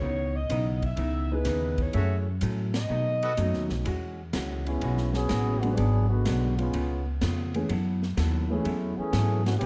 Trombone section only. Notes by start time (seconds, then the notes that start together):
4.66 G#3 B3 C#4 E4
5.13 F#3 B3 C#4 G#4
5.61 C#3 G#3 B3 F#4
5.76 F#3 B3 D4 G#4
6.09 D3 G#3 B3 F#4
6.58 G#3 B3 C#4 F4
8.49 G#3 A3 C#4 E4
8.97 E3 A3 C#4 G#4
9.44 E3 A3 C#4 F#4
9.59 E3 B3 C#4 G4